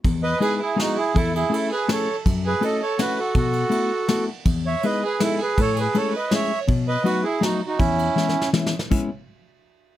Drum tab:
CC |------------------|------------------|------------------|------------------|
RD |x-----x-----x-----|x--x--x-----x-----|x-----x-----x-----|x--x--x-----x-----|
SD |------------o-----|------------o-----|------------o-----|------------o-----|
BD |o-----------------|o-----------------|o-----------------|o-----------------|

CC |------------------|------------------|------------------|------------------|
RD |x-----x-----x-----|x--x--x-----x-----|x-----x-----x-----|x--x--------------|
SD |------------o-----|------------o-----|------------o-----|------o-o-o-o-o-o-|
BD |o-----------------|o-----------------|o-----------------|o-----------------|

CC |x-----------------|
RD |------------------|
SD |------------------|
BD |o-----------------|